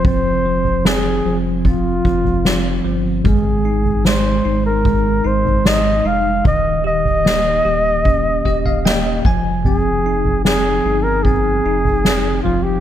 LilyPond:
<<
  \new Staff \with { instrumentName = "Flugelhorn" } { \time 4/4 \key f \minor \tempo 4 = 75 c''4 aes'8. r16 f'4. r8 | aes'4 c''8. bes'8. c''8 ees''8 f''8 | ees''8 ees''2. r8 | aes'4 aes'8. bes'16 aes'4. f'16 g'16 | }
  \new Staff \with { instrumentName = "Tine electric piano" } { \time 4/4 \key f \minor << { r1 | r1 | r2 r8 ees''16 f''16 g''8 aes''8 | r1 | } \\ { <f c'>8 f8 c'8 f8 c'8 f8 c'8 f8 | aes8 ees'8 aes8 ees'8 aes8 ees'8 aes8 ees'8 | ees8 g'8 bes8 g'8 des'8 g'8 bes8 f8 | c'8 ees'8 c'8 ees'8 c'8 ees'8 c'8 f8 | } >> }
  \new Staff \with { instrumentName = "Sub bass" } { \clef bass \time 4/4 \key f \minor f,,4. f,,4 f,,4 g,,8 | aes,,4. aes,,4 aes,,4 f,,8 | ees,,4. ees,,4 ees,,4 f,,8~ | f,,4. g,,4 f,,4 f,,8 | }
  \new DrumStaff \with { instrumentName = "Drums" } \drummode { \time 4/4 <bd tomfh>8. tomfh16 sn4 <bd tomfh>8 bd16 tomfh16 sn4 | <bd tomfh>8. tomfh16 sn4 <bd tomfh>8. tomfh16 sn4 | <bd tomfh>8. tomfh16 sn4 <bd tomfh>8 bd16 tomfh16 sn8 <bd tomfh>8 | tomfh8. tomfh16 sn4 <bd tomfh>8. tomfh16 sn8 tomfh8 | }
>>